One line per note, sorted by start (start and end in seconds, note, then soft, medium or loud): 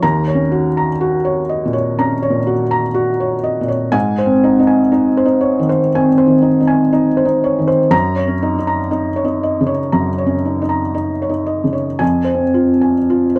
0.03 1.94 D#2 medium
0.03 0.42 A#5 medium
0.28 0.66 C#5 medium
0.35 0.87 C#4 medium
0.52 0.91 F#4 medium
0.77 1.16 A#5 medium
1.01 1.40 F#4 medium
1.25 1.64 C#5 medium
1.49 1.74 D#5 medium
1.65 2.18 A#2 medium
1.73 2.12 C#5 medium
1.99 2.50 C#4 medium
1.99 2.37 A#5 medium
2.22 2.62 C#5 medium
2.30 2.83 A#2 medium
2.47 2.86 F#4 medium
2.71 3.11 A#5 medium
2.94 3.35 F#4 medium
3.20 3.60 C#5 medium
3.44 3.69 D#5 medium
3.61 3.94 A#2 medium
3.68 3.94 C#5 medium
3.92 5.88 G#2 medium
3.92 4.33 G#5 medium
4.18 4.58 C5 medium
4.26 4.80 C4 medium
4.44 4.58 D#4 medium
4.59 4.90 D#4 medium
4.67 5.08 G#5 medium
4.92 5.24 D#4 medium
5.17 5.58 C5 medium
5.25 5.79 D#4 medium
5.41 5.67 C#5 medium
5.59 6.13 D#3 medium
5.69 6.08 C5 medium
5.95 6.47 C4 medium
5.95 6.34 G#5 medium
6.18 6.58 C5 medium
6.27 6.80 D#3 medium
6.42 6.59 D#4 medium
6.60 6.91 D#4 medium
6.67 7.07 G#5 medium
6.93 7.24 D#4 medium
7.17 7.57 C5 medium
7.25 7.79 D#4 medium
7.44 7.68 C#5 medium
7.59 7.92 D#3 medium
7.68 7.93 C5 medium
7.91 9.89 F#2 medium
7.91 8.32 A#5 medium
8.16 8.57 C#5 medium
8.27 8.80 C#4 medium
8.43 8.57 D#4 medium
8.58 8.89 D#4 medium
8.67 9.08 A#5 medium
8.91 9.23 D#4 medium
9.16 9.58 C#5 medium
9.25 9.80 D#4 medium
9.43 9.69 D#5 medium
9.61 10.15 C#3 medium
9.67 10.09 C#5 medium
9.92 11.97 F#2 medium
9.92 10.34 A#5 medium
10.18 10.60 C#5 medium
10.26 10.82 C#4 medium
10.45 10.60 D#4 soft
10.62 10.93 D#4 medium
10.69 11.11 A#5 medium
10.94 11.28 D#4 medium
11.22 11.64 C#5 medium
11.29 11.87 D#4 medium
11.47 11.74 D#5 soft
11.64 12.00 C#3 soft
11.73 12.01 C#5 soft
11.99 13.39 F2 medium
11.99 12.43 G#5 medium
12.24 12.69 C5 soft
12.34 12.93 C4 soft
12.54 12.98 F4 medium
12.81 13.25 G#5 medium
13.10 13.39 F4 medium
13.36 13.39 C5 medium